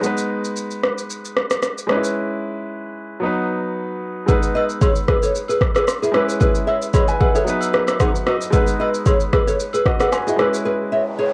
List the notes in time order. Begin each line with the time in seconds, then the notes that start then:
0.01 G#3 B3 D#4, shaker
0.06 B4
0.18 shaker
0.44 shaker
0.56 shaker
0.71 shaker
0.83 cross-stick
0.98 shaker
1.10 shaker
1.25 shaker
1.37 cross-stick
1.51 cross-stick, shaker
1.63 cross-stick, shaker
1.78 shaker
1.87 G#3 C#4 D#4, cross-stick
1.92 B4
1.97 E4
2.04 shaker
3.20 F#3 B3 D#4
3.25 B4
4.26 G#3 B3 D#4 G#4 B4, kick, high agogo, shaker
4.31 B4
4.43 shaker
4.55 B4 D#5, high agogo
4.69 shaker
4.81 G#4 C#5, kick, high agogo, low woodblock, shaker
4.96 shaker
5.08 G#4 B4, kick, cross-stick, high agogo
5.23 A4 C#5, shaker
5.35 shaker
5.48 G#4 B4, high agogo, shaker
5.61 kick, cross-stick
5.75 G#4 B4, cross-stick, high agogo, shaker
5.87 cross-stick, low woodblock, shaker
6.02 E4 G#4, shaker
6.12 G#3 C#4 E4 G#4 B4, cross-stick, high agogo
6.17 B4
6.29 shaker
6.40 G#4 B4, kick, high agogo, shaker
6.55 shaker
6.67 C#5 E5, high agogo
6.82 shaker
6.94 G#4 C#5 D#5 B5, kick, high agogo, low woodblock, shaker
7.08 B4 G#5, shaker
7.20 G#4 B4 F#5, kick, high agogo
7.35 G#4 A4 C#5 E5, shaker
7.44 F#3 B3 D#4, shaker
7.49 B4
7.61 high agogo, shaker
7.73 G#4 B4, cross-stick
7.87 cross-stick, high agogo, shaker
8.00 D#4 G#4 F#5, kick, cross-stick, low woodblock, shaker
8.15 shaker
8.26 D#4 F#4 D#5, cross-stick, high agogo
8.41 shaker
8.51 G#3 B3 D#4 G#4 B4, kick, high agogo, shaker
8.56 B4
8.67 shaker
8.80 B4 D#5, high agogo
8.94 shaker
9.06 G#4 C#5, kick, high agogo, low woodblock, shaker
9.20 shaker
9.33 G#4 B4, kick, cross-stick, high agogo
9.47 A4 C#5, shaker
9.60 shaker
9.73 G#4 B4, high agogo, shaker
9.86 F#4 D#5, kick, cross-stick
10.00 G#4 B4 F#5, cross-stick, high agogo, shaker
10.12 B4 G#5, cross-stick, low woodblock, shaker
10.27 E4 F#4 G#4 D#5, shaker
10.36 G#3 C#4 E4 G#4 B4, cross-stick, high agogo
10.41 B4
10.54 shaker
10.65 G#4 B4, noise sweep
10.92 C#5 E5
11.18 G#4 C#5